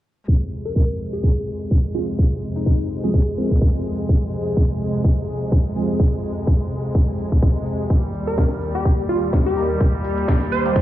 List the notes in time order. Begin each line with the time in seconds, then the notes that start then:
0.28 F2 C3 G#3, kick
0.52 open hi-hat
0.65 A#4
0.76 kick
1.00 open hi-hat
1.13 G#4
1.23 kick
1.47 open hi-hat
1.71 kick
1.95 F3 G#3 C4 F4 G#4, open hi-hat
2.19 kick
2.43 open hi-hat
2.56 D#4
2.66 D#4, kick
2.90 open hi-hat
3.04 F3 G#3 C4 G4 G#4
3.14 kick
3.38 F3 G#3 C4 A#4, open hi-hat
3.51 kick
3.62 kick
3.85 open hi-hat
4.09 kick
4.33 open hi-hat
4.57 kick
4.81 open hi-hat
5.04 kick
5.28 open hi-hat
5.52 kick
5.76 F3 G#3 C4 G#4, open hi-hat
6.00 kick
6.23 open hi-hat
6.47 kick
6.71 open hi-hat
6.95 kick
7.19 open hi-hat
7.32 kick
7.43 kick
7.66 open hi-hat
7.90 D#2 A#2 G3, kick, closed hi-hat
8.14 open hi-hat
8.27 A#4, closed hi-hat
8.38 kick, snare, closed hi-hat
8.62 open hi-hat
8.75 G4, closed hi-hat
8.85 kick, closed hi-hat
8.99 closed hi-hat
9.09 F4, open hi-hat
9.33 kick, snare, closed hi-hat
9.46 G4, closed hi-hat
9.57 G3 A#3 D#4 A#4, open hi-hat
9.81 kick, closed hi-hat
10.04 open hi-hat
10.18 closed hi-hat
10.28 kick, snare, closed hi-hat
10.52 C5, open hi-hat
10.66 G3 A#3 D#4 G4, closed hi-hat
10.76 kick, closed hi-hat